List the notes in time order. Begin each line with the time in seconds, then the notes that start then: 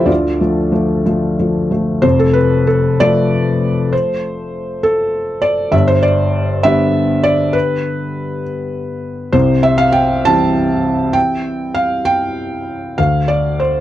Already playing: D2 D3 F3 A3 E4 F4 G4 A4 B4 C5 D5 E5 F5 G5
0.05 D2 D3 F4 D5
0.40 F3 A3
0.72 F3 A3
1.06 F3 A3
1.39 F3 A3
1.71 F3 A3
2.02 F1 F2 C5
2.20 A4
2.33 B4
2.67 A4
3.00 F3 A3 D5
3.93 C5
4.83 A4
5.42 D5
5.71 G1 G2 E5
5.88 C5
6.03 D5
6.63 D3 G3 B3 E5
7.24 D5
7.53 B4
9.32 C2 C3 C5
9.63 E5
9.78 F5
9.92 G5
10.25 E3 G3 C4 A5
11.13 G5
11.74 F5
12.05 G5
12.98 D2 F5
13.28 D5
13.60 C5